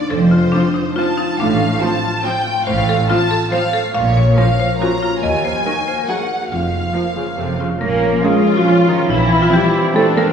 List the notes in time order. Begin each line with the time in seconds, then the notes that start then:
Already playing: D3 F3 A#3 D4 F4 A#4
0.10 F1 F2 F3 A4 C5
0.31 C4 F4
0.52 F3 C4 D4 F4
0.74 D#4 C5
0.96 F3 C4 F4 A5
1.17 C4 D#4
1.38 A1 A2 D4 F5
1.61 A3
1.81 F3 C4 F4 A5
2.03 F4
2.23 F3 C4 F4 G5
2.46 A3
2.66 A1 A2 C5 F5
2.88 A3 A4
3.09 F3 C4 F4 A5
3.31 F4 A4
3.51 F3 C4 F4 C5 F5
3.73 A3 A4
3.94 A#1 A#2 C#5 F5
4.17 F3 C#5
4.36 F3 A#3 C#4 A#4 F5
4.59 F4 C5
4.79 F3 A#3 C#4 F#4 A#5
5.01 A#3 F4
5.21 D#2 D#3 D#5 G#5
5.44 A#3 C5
5.65 D#3 F#3 A#3 F#4 A#4
5.86 A#4 C5
5.98 A#4
6.08 D#3 F#3 A#3 F#4 G#4 F#5
6.29 D#4
6.42 F#4
6.50 F1 F2 F3 F4 F5
6.72 A#3
6.94 F3 A#3 F4
7.16 C#3 A#4
7.37 F1 F2 C3 F3 A3 C4
7.58 C#3 F3 C4 F4
7.80 A#1 A#2 F3 A#3 C#4 A#4
8.03 F3
8.23 G#3 C#4 F4 G#4 F5
8.46 A#4
8.55 F#3 F#4
8.65 F3 C#4 F4 F5
8.88 D#3 A#3 D#4
9.08 A#1 A#2 E3 C4 E4
9.32 A#3
9.41 F3 F4
9.52 G3 C4 E4 G4 G5
9.75 C5
9.94 A3 C4 D4 E4 A4 G5
10.16 A#3 A#4